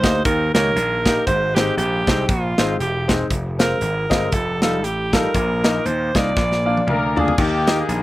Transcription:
Already playing: C5
0.03 D2 A#3 D#4 G4 D#5, kick, snare, closed hi-hat
0.25 D#2 D#3 A#4, kick, closed hi-hat
0.54 C#2 A#3 D#4 G4 A#4 C#5, snare, closed hi-hat
0.75 A#1, closed hi-hat
1.06 A#3 D#4 G4 A#4, kick, snare, closed hi-hat
1.26 G#1 G#2 C5, kick, closed hi-hat
1.55 G#3 C4 D#4 G4 C5, snare, closed hi-hat
1.76 A#1 G4, closed hi-hat
2.07 C2 G#3 C4 D#4 C5, kick, snare, closed hi-hat
2.27 A#1 F4, kick, closed hi-hat
2.58 G#1 G#3 C4 D#4 C5, snare, closed hi-hat
2.79 E1 G4, closed hi-hat
3.08 G#3 C4 D#4 C5, kick, snare, closed hi-hat
3.30 F1, kick, closed hi-hat
3.59 G#3 C4 F4 A#4 C5, snare, closed hi-hat
3.81 G#1, closed hi-hat
4.10 G1 G#3 C4 F4 D#5, kick, snare, closed hi-hat
4.32 F1 A4, kick, closed hi-hat
4.62 G3 D#4 F4 A4, snare, closed hi-hat
4.82 A1 G4, closed hi-hat
5.13 G3 D#4 F4 A4 A#4, kick, snare, closed hi-hat
5.34 A#1 A#2, kick, closed hi-hat
5.64 A#3 D#4 F4 D#5, snare, closed hi-hat
5.85 D#2 C5, closed hi-hat
6.15 C2 A#3 D#4 F4 D5 D#5, kick, snare, closed hi-hat
6.36 A#1 A#2, kick, snare
6.52 snare
6.66 A#3 D4 F4 D5
6.77 high tom
6.87 D2 A#4 F5, mid tom
7.16 A#3 D4 F4 G#4 D5, floor tom
7.28 floor tom
7.38 D#2 D#3 A#3 D#4 G4, kick, crash
7.67 A#3 D#4 G4 D#5, snare, closed hi-hat
7.80 D#4 G#4
7.88 A#1, closed hi-hat

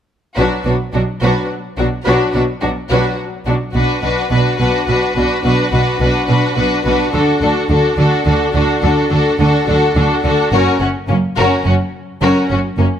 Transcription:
0.36 B1 B2 F#3 D4 F#4 B4
0.65 B1 B2 F#3 D4 F#4 B4
0.93 B1 B2 F#3 D4 F#4
1.22 B1 B2 F#3 D4 F#4 B4
1.78 B1 B2 F#3 D4 F#4
2.06 B1 B2 F#3 D4 F#4 B4
2.34 B1 B2 F#3 D4 F#4 B4
2.62 B1 B2 F#3 D4 F#4
2.90 B1 B2 F#3 D4 F#4 B4
3.46 B1 B2 F#3 D4 F#4
3.75 B1 B2 D4 F#4 B4
4.03 B1 B2 D4 F#4 B4
4.31 B1 B2 D4 F#4 B4
4.59 B1 B2 D4 F#4 B4
4.88 B1 B2 D4 F#4 B4
5.16 B1 B2 D4 F#4 B4
5.44 B1 B2 D4 F#4 B4
5.73 B1 B2 D4 F#4 B4
6.00 B1 B2 D4 F#4 B4
6.28 B1 B2 D4 F#4 B4
6.57 B1 B2 D4 F#4 B4
6.85 B1 B2 D4 F#4 B4
7.12 D2 D3 D4 F#4 A4
7.41 D2 D3 D4 F#4 A4
7.69 D2 D3 D4 F#4 A4
7.98 D2 D3 D4 F#4 A4
8.26 D2 D3 D4 F#4 A4
8.54 D2 D3 D4 F#4 A4
8.82 D2 D3 D4 F#4 A4
9.11 D2 D3 D4 F#4 A4
9.39 D2 D3 D4 F#4 A4
9.68 D2 D3 D4 F#4 A4
9.95 D2 D3 D4 F#4 A4
10.24 D2 D3 D4 F#4 A4
10.53 F#1 F#2 C#4 F#4 A#4
10.80 F#1 F#2 C#4 F#4
11.09 F#1 F#2 A#3 C#4
11.37 F#1 F#2 C#4 F#4 A#4
11.66 F#1 F#2 C#4 F#4
12.22 F#1 F#2 C#4 F#4 A#4
12.51 F#1 F#2 C#4 F#4
12.78 F#1 F#2 A#3 C#4

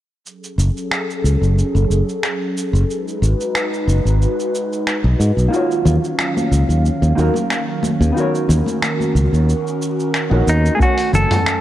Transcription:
0.25 F#3 C#4 G#4 A4, shaker
0.44 shaker
0.58 F#1, shaker
0.77 shaker
0.91 finger snap, shaker
1.10 shaker
1.24 C#2, shaker
1.41 F#1, shaker
1.58 shaker
1.75 F#1, shaker
1.90 F#1, shaker
2.09 shaker
2.23 finger snap, shaker
2.58 shaker
2.73 F#1, shaker
2.89 G#3 D#4 F#4 B4, shaker
3.08 shaker
3.22 G#1, shaker
3.41 shaker
3.55 finger snap, shaker
3.74 shaker
3.88 F#1, shaker
4.05 G#1, shaker
4.22 shaker
4.40 shaker
4.55 shaker
4.73 shaker
4.87 finger snap, shaker
5.04 B1
5.20 G#2, shaker
5.37 B1, shaker
5.48 A#3 D#4 F4
5.53 D#3 F#3 C#4 F#4 C#5 F5, shaker
5.71 shaker
5.85 D#2, low conga, shaker
6.04 shaker
6.19 finger snap, shaker
6.37 high conga, shaker
6.51 C#2, shaker
6.69 D#2, shaker
6.86 shaker
7.02 D#2, shaker
7.15 D#2 A#3 D#4 F#4 A#4, shaker
7.34 high conga, shaker
7.50 finger snap, shaker
7.83 high conga, shaker
8.01 D#2, shaker
8.12 B3 D#4
8.16 C#4 F#4 A#4 C#5, shaker
8.35 shaker
8.49 D#2, low conga, shaker
8.66 high conga, shaker
8.82 finger snap, shaker
9.00 high conga, shaker
9.15 C#2, shaker
9.33 D#2, shaker
9.49 shaker
9.67 shaker
9.82 shaker
10.00 shaker
10.14 finger snap, shaker
10.30 A#1 B3 D#4 F#4 A#4 C#5
10.47 D#2 D#4, shaker
10.66 shaker
10.75 A3 C#4 G#4
10.80 F#3 A3 C#4 F#4 G#5, kick, shaker
10.85 C#5
10.98 open hi-hat, shaker
11.13 F#1 A4, low conga, shaker
11.31 mid tom, open hi-hat, shaker
11.46 finger snap, shaker

